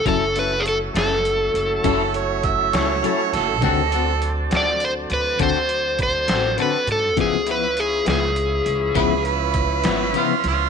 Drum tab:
HH |xxxxxxxxxxxx|xxxxxxxxxxxx|xxxxxxxxxxxx|
SD |---o-----o-o|---o-----o--|---o-----o-o|
BD |o-----o-o---|o-----o-o---|o-----o-o---|